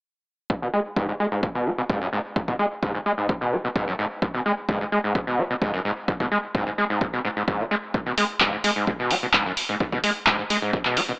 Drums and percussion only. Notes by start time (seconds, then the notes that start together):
0.50 kick
0.96 kick
1.43 kick
1.90 kick
2.36 kick
2.48 kick
2.83 kick
3.29 kick
3.76 kick
4.22 kick
4.69 kick
5.15 kick
5.62 kick
6.08 kick
6.20 kick
6.55 kick
7.01 kick
7.48 kick
7.94 kick
8.18 open hi-hat
8.40 kick, clap
8.64 open hi-hat
8.87 kick
9.11 open hi-hat
9.34 kick, clap
9.57 open hi-hat
9.80 kick
9.92 kick
10.04 open hi-hat
10.27 kick, clap
10.50 open hi-hat
10.73 kick
10.85 clap
10.97 open hi-hat